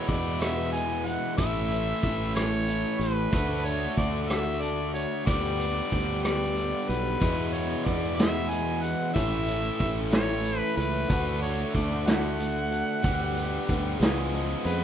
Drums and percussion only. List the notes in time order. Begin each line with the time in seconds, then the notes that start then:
0.09 kick, closed hi-hat
0.41 cross-stick, closed hi-hat
0.73 closed hi-hat
1.06 closed hi-hat
1.38 kick, closed hi-hat
1.71 closed hi-hat
2.03 kick, closed hi-hat
2.36 cross-stick, closed hi-hat
2.68 closed hi-hat
3.01 closed hi-hat
3.32 kick, closed hi-hat
3.65 closed hi-hat
3.97 kick, closed hi-hat
4.30 cross-stick, closed hi-hat
4.63 closed hi-hat
4.95 closed hi-hat
5.27 kick, closed hi-hat
5.60 closed hi-hat
5.92 kick, closed hi-hat
6.24 cross-stick, closed hi-hat
6.57 closed hi-hat
6.90 closed hi-hat
7.21 kick, closed hi-hat
7.54 closed hi-hat
7.86 kick, closed hi-hat
8.19 snare, closed hi-hat
8.51 closed hi-hat
8.84 closed hi-hat
9.16 kick, closed hi-hat
9.48 closed hi-hat
9.80 kick, closed hi-hat
10.12 snare, closed hi-hat
10.45 closed hi-hat
10.78 closed hi-hat
11.10 kick, closed hi-hat
11.43 closed hi-hat
11.75 kick, closed hi-hat
12.07 snare, closed hi-hat
12.40 closed hi-hat
12.72 closed hi-hat
13.04 kick, closed hi-hat
13.37 closed hi-hat
13.69 kick, closed hi-hat
14.02 snare, closed hi-hat
14.34 closed hi-hat
14.67 closed hi-hat